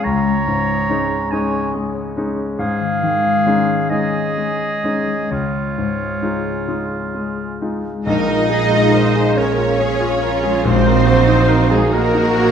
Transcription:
0.00 2.61 C#3 medium
0.00 0.26 G#3 soft
0.00 0.47 C#4 soft
0.00 0.89 G#4 soft
0.00 1.10 C#5 soft
0.00 1.29 C#5 medium
0.04 2.55 C#2 medium
0.04 1.33 A#5 medium
0.27 3.00 G#3 soft
0.47 1.15 G#2 soft
0.47 2.35 C#4 soft
0.69 2.14 D#4 soft
0.89 1.28 G#3 soft
0.89 1.28 C#4 soft
0.89 1.28 D#4 soft
0.89 3.66 G#4 soft
1.11 1.52 C#5 soft
1.31 1.70 G#3 soft
1.31 1.70 C#4 soft
1.31 1.70 D#4 soft
1.31 1.72 C#5 medium
1.31 1.73 D#5 medium
1.31 1.73 G#5 medium
1.53 1.93 C#5 soft
1.74 2.16 G#3 soft
1.74 5.64 D#5 soft
1.94 5.84 C#5 soft
2.15 2.55 G#3 soft
2.15 2.55 C#4 soft
2.15 3.44 D#4 soft
2.15 2.55 D#4 soft
2.36 3.22 C#4 soft
2.58 5.35 G#2 medium
2.58 5.27 G#2 medium
2.58 3.86 G#4 medium
2.58 3.91 F5 medium
2.80 5.35 D#3 soft
3.02 3.73 D#3 soft
3.02 5.06 G#3 soft
3.23 7.13 C#4 soft
3.45 3.87 G#3 soft
3.45 3.86 C#4 soft
3.45 5.99 D#4 soft
3.45 3.87 D#4 soft
3.67 4.12 G#4 soft
3.90 4.33 G#3 soft
3.90 4.33 C#4 soft
3.90 4.33 D#4 soft
3.90 5.28 G#4 medium
3.90 5.32 D#5 medium
4.13 4.58 G#4 soft
4.38 4.82 G#3 soft
4.59 6.44 G#4 soft
4.84 5.27 G#3 soft
4.84 5.28 C#4 soft
4.84 5.28 D#4 soft
5.07 5.76 G#3 soft
5.30 8.03 C#2 soft
5.30 8.10 C#3 medium
5.30 7.58 F4 medium
5.30 7.61 C#5 medium
5.77 6.51 G#2 soft
5.77 7.83 G#3 soft
6.00 7.60 D#4 soft
6.22 6.64 G#3 soft
6.22 6.65 D#4 soft
6.22 8.71 F4 soft
6.22 6.65 F4 soft
6.45 6.89 G#4 soft
6.68 7.10 G#3 soft
6.68 7.11 D#4 soft
6.68 7.10 F4 soft
6.68 7.13 D#5 soft
6.91 7.36 G#4 soft
7.14 7.60 G#3 soft
7.14 8.10 D#5 soft
7.38 9.15 G#4 soft
7.61 8.03 G#3 soft
7.61 8.10 D#4 soft
7.61 8.03 D#4 soft
7.61 8.03 F4 soft
7.84 8.49 G#3 soft
8.05 9.22 A#1 medium
8.05 10.62 A#1 medium
8.05 10.64 A#2 medium
8.05 9.34 D#4 medium
8.05 10.61 G#4 medium
8.05 8.47 A#4 medium
8.05 9.38 D#5 loud
8.05 9.34 D#5 medium
8.05 9.39 D#5 medium
8.05 9.34 D#5 medium
8.05 11.88 F5 medium
8.27 10.69 F3 soft
8.27 8.63 A#4 soft
8.49 8.85 G#4 soft
8.49 8.95 G#4 medium
8.71 9.07 F4 soft
8.71 10.22 F4 soft
8.94 9.29 A#4 medium
8.94 9.38 C5 medium
9.15 9.37 G#4 soft
9.15 9.58 G#4 medium
9.37 10.51 A#1 medium
9.37 10.66 C#4 medium
9.37 9.72 A#4 medium
9.37 9.81 A#4 medium
9.37 10.65 C#5 medium
9.37 10.66 C#5 medium
9.58 9.93 F4 soft
9.58 10.01 G#4 soft
9.80 10.14 G#4 medium
9.80 10.23 G#4 medium
9.80 10.70 F5 medium
10.00 10.35 F4 medium
10.00 10.69 G#4 medium
10.23 10.69 F4 medium
10.23 10.65 F4 medium
10.23 10.57 A#4 soft
10.44 10.69 G#3 soft
10.44 10.66 G#4 medium
10.65 12.52 A#1 medium
10.65 11.77 A#1 medium
10.65 12.52 A#2 medium
10.65 11.69 C4 loud
10.65 11.93 D#4 medium
10.65 12.52 F#4 medium
10.65 11.73 C5 loud
10.65 11.73 C5 medium
10.65 11.70 C5 medium
10.65 11.72 C5 medium
10.86 12.52 A#3 soft
10.86 11.20 A#4 medium
11.06 12.52 F#3 medium
11.06 11.41 F#4 medium
11.28 11.63 D#4 medium
11.28 12.52 D#4 medium
11.48 11.83 A#4 medium
11.69 11.93 G#3 medium
11.69 12.13 F#4 medium
11.69 11.92 G#4 soft
11.69 11.93 G#4 medium
11.69 11.94 G#4 medium
11.69 11.93 G#4 medium
11.92 12.52 A#1 medium
11.92 12.52 A#3 loud
11.92 12.52 F#4 medium
11.92 12.52 A#4 medium
11.92 12.52 A#4 loud
11.92 12.27 A#4 medium
11.92 12.52 A#4 medium
11.92 12.52 A#4 loud
11.92 12.52 D#5 medium
11.92 12.34 D#5 medium
12.14 12.48 D#4 medium
12.14 12.52 F#4 medium
12.35 12.52 F#4 medium
12.35 12.52 D#5 medium

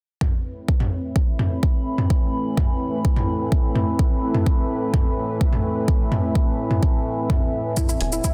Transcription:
0.21 8.34 A2 medium
0.21 8.34 E3 medium
0.21 7.73 A3 medium
0.21 7.77 C4 medium
0.21 8.34 E4 medium
0.21 7.73 B4 medium
0.21 kick loud
0.21 mid tom medium
0.46 8.34 E5 medium
0.68 kick loud
0.80 mid tom medium
0.86 7.77 A4 medium
1.05 5.37 B5 medium
1.16 kick loud
1.39 mid tom medium
1.63 kick loud
1.98 mid tom medium
2.10 kick loud
2.57 kick loud
2.57 mid tom medium
3.05 kick loud
3.16 mid tom medium
3.52 kick loud
3.75 mid tom medium
3.99 kick loud
4.35 mid tom medium
4.46 kick loud
4.94 kick loud
4.94 mid tom medium
5.41 kick loud
5.53 mid tom medium
5.88 kick loud
6.12 mid tom medium
6.35 kick loud
6.71 mid tom medium
6.83 kick loud
7.30 kick loud
7.30 mid tom medium
7.77 8.34 E3 medium
7.77 8.34 B3 medium
7.77 7.83 E4 medium
7.77 kick loud
7.77 mid tom medium
7.77 shaker medium
7.89 7.94 E4 medium
7.89 shaker soft
8.01 8.21 E1 loud
8.01 8.06 G#5 medium
8.01 open hi-hat loud
8.13 8.18 E4 medium
8.13 shaker medium
8.24 8.30 E4 medium
8.24 8.34 G#4 medium
8.24 kick loud
8.24 shaker medium

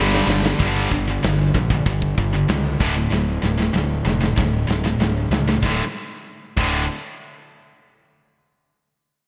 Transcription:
0.00 0.21 G1 medium
0.00 0.26 G2 loud
0.00 0.26 D3 loud
0.00 0.26 G3 loud
0.15 snare medium
0.27 0.53 G1 medium
0.27 0.44 G2 medium
0.27 0.44 D3 medium
0.27 snare loud
0.45 0.59 G2 medium
0.45 0.59 D3 medium
0.45 snare medium
0.60 0.86 G1 loud
0.60 0.89 G2 medium
0.60 0.89 D3 medium
0.60 0.90 G3 medium
0.60 kick loud
0.60 open hi-hat medium
0.91 1.18 G1 medium
0.91 1.08 G2 medium
0.91 1.08 D3 medium
0.91 kick medium
0.91 open hi-hat medium
1.09 1.24 G2 medium
1.09 1.23 D3 medium
1.23 1.50 G1 medium
1.23 1.52 G2 medium
1.23 1.51 D3 medium
1.23 snare loud
1.23 open hi-hat medium
1.54 1.81 A#1 medium
1.54 1.69 G2 medium
1.54 1.69 D3 medium
1.54 kick medium
1.54 open hi-hat soft
1.70 1.85 G2 medium
1.70 1.85 D3 medium
1.70 kick medium
1.86 2.12 G1 medium
1.86 2.14 G2 medium
1.86 2.14 D3 medium
1.86 kick loud
1.86 open hi-hat medium
2.02 kick medium
2.18 2.44 G1 medium
2.18 2.33 G2 medium
2.18 2.33 D3 medium
2.18 kick medium
2.18 open hi-hat medium
2.34 2.47 G2 medium
2.34 2.48 D3 medium
2.48 2.75 C#2 medium
2.48 2.76 G2 medium
2.48 2.77 D3 medium
2.48 snare loud
2.48 open hi-hat medium
2.80 3.06 D1 medium
2.80 2.94 D2 medium
2.80 2.94 A2 medium
2.80 2.94 D3 medium
2.80 kick loud
2.80 open hi-hat soft
2.97 3.11 D2 medium
2.97 3.11 A2 medium
3.11 3.37 D1 loud
3.11 3.40 D2 medium
3.11 3.40 A2 medium
3.11 snare medium
3.43 3.69 D1 medium
3.43 3.58 D2 medium
3.43 3.58 A2 medium
3.43 snare medium
3.59 3.72 D2 medium
3.59 3.73 A2 medium
3.59 snare medium
3.73 4.00 D1 medium
3.73 4.02 D2 medium
3.73 4.02 A2 medium
3.73 snare medium
4.05 4.32 F1 medium
4.05 4.20 D2 medium
4.05 4.20 A2 medium
4.05 snare medium
4.21 4.36 D2 medium
4.21 4.37 A2 medium
4.21 snare medium
4.37 4.64 D1 medium
4.37 4.66 D2 medium
4.37 4.66 A2 medium
4.37 kick loud
4.37 snare medium
4.68 4.95 D1 medium
4.68 4.85 D2 medium
4.68 4.84 A2 medium
4.68 snare medium
4.85 5.00 D2 medium
4.85 4.99 A2 medium
4.85 snare medium
4.99 5.26 D1 medium
4.99 5.29 D2 medium
4.99 5.29 A2 medium
4.99 snare medium
5.31 5.58 C#2 medium
5.31 5.47 D2 medium
5.31 5.47 A2 medium
5.31 snare loud
5.48 5.62 D2 medium
5.48 5.63 A2 medium
5.48 snare medium
5.63 5.81 D1 loud
5.63 5.82 D2 medium
5.63 5.83 A2 medium
5.63 5.83 D3 medium
5.63 kick loud
5.63 snare medium
6.57 6.87 D1 medium
6.57 6.83 D2 medium
6.57 6.83 A2 medium
6.57 6.84 D3 medium
6.57 kick medium
6.57 crash medium

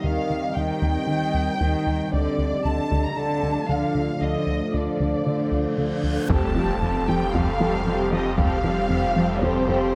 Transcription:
0.00 0.19 D#2 medium
0.00 0.50 D#3 soft
0.00 2.09 G3 soft
0.00 2.13 C4 medium
0.00 2.08 G4 medium
0.00 2.09 D#5 medium
0.00 0.55 F5 medium
0.30 0.45 D#2 medium
0.55 0.72 D#2 medium
0.55 1.02 D#3 soft
0.55 2.12 G5 medium
0.82 0.98 D#2 medium
1.07 1.23 D#3 medium
1.07 1.54 D#3 soft
1.34 1.50 D#2 medium
1.60 1.76 D#2 medium
1.60 2.06 D#3 soft
1.87 2.02 D#2 medium
2.12 2.29 D2 medium
2.12 2.58 D3 soft
2.12 6.30 F3 medium
2.12 6.30 A3 medium
2.12 6.29 A4 medium
2.12 2.64 D5 medium
2.12 6.28 F5 medium
2.38 2.54 D2 medium
2.64 2.80 D2 medium
2.64 3.10 D3 soft
2.64 3.03 A5 medium
2.91 3.07 D2 medium
3.04 3.17 A#5 medium
3.17 3.63 D3 medium
3.17 3.33 D3 soft
3.17 3.69 A5 medium
3.43 3.58 D2 medium
3.68 3.85 D2 medium
3.68 4.14 D3 soft
3.68 4.21 F5 medium
3.95 4.10 D2 medium
4.20 4.37 D2 medium
4.20 4.67 D3 soft
4.20 4.73 D#5 medium
4.20 reverse cymbal soft
4.47 4.62 D2 medium
4.73 4.89 D2 soft
4.73 5.19 D3 soft
4.73 6.04 D5 soft
5.00 5.15 D2 medium
5.25 5.71 D3 soft
5.25 5.42 D3 soft
5.52 5.67 D2 soft
5.78 5.93 D2 medium
5.78 6.24 D3 soft
6.03 6.19 D2 medium
6.29 9.95 F1 medium
6.29 6.37 F2 soft
6.29 6.45 F2 medium
6.29 9.95 G3 medium
6.29 6.54 G3 soft
6.29 6.54 C4 soft
6.29 9.95 C4 medium
6.29 9.95 G4 medium
6.29 6.55 G4 soft
6.29 6.54 A4 soft
6.29 9.95 F5 medium
6.29 7.04 A5 medium
6.29 taiko medium
6.29 impact soft
6.55 6.63 F2 soft
6.55 6.71 F3 soft
6.55 6.81 G3 soft
6.55 6.81 C4 soft
6.55 6.81 G4 soft
6.55 6.81 A4 soft
6.82 6.90 F2 soft
6.82 6.98 F2 medium
6.82 7.08 G3 soft
6.82 7.08 C4 soft
6.82 7.06 G4 soft
6.82 7.06 A4 soft
7.07 7.16 F2 soft
7.07 7.24 F3 medium
7.07 7.34 G3 soft
7.07 7.34 C4 soft
7.07 7.32 G4 soft
7.07 7.32 A4 soft
7.07 7.33 G5 medium
7.33 7.42 F2 soft
7.33 7.50 F2 medium
7.33 7.59 G3 soft
7.33 7.59 C4 soft
7.33 7.59 G4 soft
7.33 7.59 A4 soft
7.33 8.12 F5 medium
7.33 taiko medium
7.60 7.68 F2 soft
7.60 7.76 F3 medium
7.60 7.85 G3 soft
7.60 7.85 C4 soft
7.60 7.85 G4 soft
7.60 7.85 A4 soft
7.86 7.94 F2 soft
7.86 8.02 F2 medium
7.86 8.11 G3 soft
7.86 8.11 C4 soft
7.86 8.11 G4 soft
7.86 8.11 A4 soft
8.12 8.20 F2 soft
8.12 8.28 F2 medium
8.12 8.37 G3 soft
8.12 8.37 C4 soft
8.12 8.36 G4 soft
8.12 8.37 A4 soft
8.12 8.38 D#5 medium
8.37 8.53 F2 medium
8.37 8.46 F2 soft
8.37 8.63 G3 soft
8.37 8.63 C4 soft
8.37 8.63 G4 soft
8.37 8.63 A4 soft
8.37 9.40 F5 medium
8.37 taiko medium
8.63 8.71 F2 soft
8.63 8.80 F3 soft
8.63 8.90 G3 soft
8.63 8.90 C4 soft
8.63 8.89 G4 soft
8.63 8.89 A4 soft
8.89 8.97 F2 soft
8.89 9.06 F2 medium
8.89 9.16 G3 soft
8.89 9.16 C4 soft
8.89 9.15 G4 soft
8.89 9.15 A4 soft
9.16 9.24 F2 soft
9.16 9.32 F3 medium
9.16 9.41 G3 soft
9.16 9.41 C4 soft
9.16 9.41 G4 soft
9.16 9.41 A4 soft
9.42 9.50 F2 medium
9.42 9.58 F2 medium
9.42 9.67 G3 soft
9.42 9.67 C4 soft
9.42 9.67 G4 soft
9.42 9.67 A4 soft
9.42 9.95 C5 medium
9.42 taiko medium
9.68 9.76 F2 medium
9.68 9.84 F3 medium
9.68 9.94 G3 soft
9.68 9.94 C4 soft
9.68 9.93 G4 soft
9.68 9.93 A4 soft

